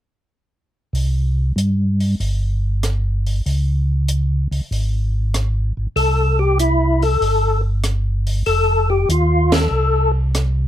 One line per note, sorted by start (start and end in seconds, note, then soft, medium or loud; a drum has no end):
0.93 1.53 C2 medium
0.93 open hi-hat soft
1.56 2.15 G2 medium
1.56 closed hi-hat soft
2.00 open hi-hat soft
2.20 3.42 G1 medium
2.20 open hi-hat soft
2.83 cross-stick soft
2.83 closed hi-hat soft
3.27 open hi-hat soft
3.46 4.48 C#2 medium
3.46 open hi-hat soft
4.08 closed hi-hat soft
4.51 4.61 C#2 soft
4.51 open hi-hat soft
4.71 5.73 G#1 medium
4.71 open hi-hat soft
5.34 cross-stick soft
5.34 closed hi-hat soft
5.77 5.87 G#1 soft
5.96 7.18 C2 medium
5.96 6.39 A4 medium
5.96 open hi-hat soft
6.39 6.58 G4 medium
6.59 7.04 E4 medium
6.59 closed hi-hat soft
7.02 7.61 A4 medium
7.02 open hi-hat soft
7.21 8.43 G1 medium
7.21 open hi-hat soft
7.84 cross-stick medium
7.84 closed hi-hat soft
8.27 open hi-hat soft
8.46 9.06 F1 medium
8.46 8.90 A4 medium
8.46 open hi-hat soft
8.90 9.09 G4 medium
9.09 9.68 D#2 medium
9.09 9.55 F4 medium
9.09 closed hi-hat soft
9.52 10.12 A4 medium
9.52 snare medium
9.52 ride medium
9.71 10.68 C2 medium
10.35 cross-stick medium
10.35 closed hi-hat soft